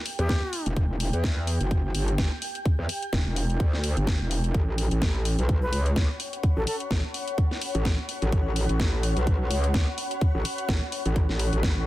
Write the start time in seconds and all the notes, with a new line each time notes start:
Already playing: G5
0.06 open hi-hat
0.19 E2 G4, closed hi-hat
0.29 kick, snare, closed hi-hat
0.53 open hi-hat
0.66 E1, closed hi-hat
0.76 E1, kick, closed hi-hat
1.00 open hi-hat
1.13 E2, closed hi-hat
1.24 kick, snare, closed hi-hat
1.47 open hi-hat
1.61 F#1, closed hi-hat
1.71 kick, closed hi-hat
1.95 G1, open hi-hat
2.08 closed hi-hat
2.18 kick, snare, closed hi-hat
2.42 open hi-hat
2.55 closed hi-hat
2.65 kick, closed hi-hat
2.79 E2
2.89 open hi-hat
3.02 closed hi-hat
3.13 E1, kick, snare, closed hi-hat
3.26 E1
3.36 open hi-hat
3.50 closed hi-hat
3.60 D2, kick, closed hi-hat
3.73 snare
3.84 open hi-hat
3.97 G1, closed hi-hat
4.07 kick, snare, closed hi-hat
4.20 E1
4.31 open hi-hat
4.44 closed hi-hat
4.54 A1 C#5, kick, closed hi-hat
4.78 open hi-hat
4.83 F#5
4.91 A1, closed hi-hat
4.96 B5
5.02 kick, snare, closed hi-hat
5.25 open hi-hat
5.39 B1, closed hi-hat
5.49 kick, closed hi-hat
5.62 B4
5.73 C#2, open hi-hat
5.86 closed hi-hat
5.96 kick, snare, closed hi-hat
6.20 open hi-hat
6.33 closed hi-hat
6.43 kick, closed hi-hat
6.57 A1 A4
6.67 A4, open hi-hat
6.80 closed hi-hat
6.91 A1, kick, snare, closed hi-hat
7.14 open hi-hat
7.28 closed hi-hat
7.38 kick, closed hi-hat
7.51 snare
7.62 open hi-hat
7.75 A1, closed hi-hat
7.85 kick, snare, closed hi-hat
8.09 open hi-hat
8.22 A1, closed hi-hat
8.32 A1, kick, closed hi-hat
8.56 open hi-hat
8.69 A1, closed hi-hat
8.80 kick, snare, closed hi-hat
9.03 open hi-hat
9.17 B1, closed hi-hat
9.27 kick, closed hi-hat
9.50 C#2, open hi-hat
9.64 closed hi-hat
9.74 kick, snare, closed hi-hat
9.98 open hi-hat
10.11 closed hi-hat
10.21 kick, closed hi-hat
10.35 A1
10.45 open hi-hat
10.58 closed hi-hat
10.69 A1, kick, snare, closed hi-hat
10.92 open hi-hat
11.05 A1, closed hi-hat
11.16 kick, closed hi-hat
11.29 A1, snare
11.39 open hi-hat
11.53 A1, closed hi-hat
11.63 kick, snare, closed hi-hat
11.76 A1